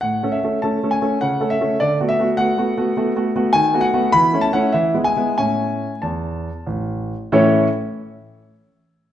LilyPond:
<<
  \new Staff \with { instrumentName = "Grand piano" } { \time 3/4 \key a \major \tempo 4 = 100 fis''8 e''8 a''8 gis''8 fis''8 e''8 | d''8 e''8 fis''2 | gis''8 fis''8 \tuplet 3/2 { b''8. a''16 fis''8 } e''8 gis''8 | gis''4 a''4 r4 |
<a, e cis' e' a' cis''>8 r2 r8 | }
  \new Staff \with { instrumentName = "Grand piano" } { \time 3/4 \key a \major \tuplet 3/2 { a,8 <a cis' a'>8 <a cis' a'>8 <a cis' a'>8 <a cis' a'>8 <a cis' a'>8 cis8 <a cis' a'>8 <a cis' a'>8 } | \tuplet 3/2 { d8 <a b fis'>8 <a b fis'>8 <a b fis'>8 <a b fis'>8 <a b fis'>8 <a b fis'>8 <a b fis'>8 <a b fis'>8 } | \tuplet 3/2 { dis8 <a b fis'>8 <a b fis'>8 e8 <a cis' e'>8 <a cis' e'>8 e8 <gis b e'>8 <gis b e'>8 } | <a, cis' e'>4 e,4 a,,4 |
r2. | }
>>